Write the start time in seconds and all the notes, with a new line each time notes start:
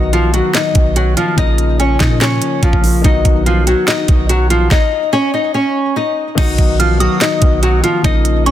Already playing: B1 D#3 F#3 B3 D#4 F#4 D#5
0.13 F3 F4, closed hi-hat
0.31 D#3 F#3 B3 F#4, closed hi-hat
0.37 F#4
0.54 D#4 D#5, snare, clap, closed hi-hat
0.72 B1 D#3 F#3 B3, kick, closed hi-hat
0.78 F#4
0.96 F#3 F#4, closed hi-hat
1.17 F3 F4, closed hi-hat
1.35 A#1 C#3 F3 A#3 D#4 D#5, kick, closed hi-hat
1.41 F4
1.58 closed hi-hat
1.79 C#4 C#5, closed hi-hat
2.00 A#2 D#4 D#5, kick, snare, clap, closed hi-hat
2.08 C#3 F3 A#3
2.14 F4
2.21 C#4 C#5, snare, clap, closed hi-hat
2.42 closed hi-hat
2.63 A#1 F3 F4, kick, closed hi-hat
2.73 A#1, kick
2.81 C#3 F3 A#3, open hi-hat
2.86 F4
3.01 B1 D#3 F#3 B3 D#4 D#5, kick, closed hi-hat
3.07 F#4
3.25 B1, kick, closed hi-hat
3.46 F3 F4, closed hi-hat
3.64 D#3 F#3 B3 F#4, closed hi-hat
3.70 F#4
3.88 D#4 D#5, snare, clap, closed hi-hat
4.06 B1 D#3 F#3 B3, kick, closed hi-hat
4.11 F#4
4.29 F#3 F#4, closed hi-hat
4.50 F3 F4, closed hi-hat
4.71 D#4 D#5, kick, snare
5.13 C#4 C#5
5.34 D#4 D#5
5.54 C#4 C#5
5.96 D#4 D#5
6.35 B1 D#3 F#3 D#4 D#5, kick, closed hi-hat, crash
6.41 F#4
6.58 B1, kick, closed hi-hat
6.80 F3 F4 F6, closed hi-hat
6.97 D#3 F#3 B3 F#4 D#6, closed hi-hat
7.03 F#4
7.21 D#4 D#5, snare, clap, closed hi-hat
7.39 B1 D#3 F#3 B3, kick, closed hi-hat
7.45 F#4
7.63 F#3 F#4, closed hi-hat
7.84 F3 F4, closed hi-hat
8.02 A#1 C#3 F3 A#3 D#4 D#5, kick, closed hi-hat
8.08 F4
8.25 closed hi-hat
8.46 C#4 C#5 C#6, closed hi-hat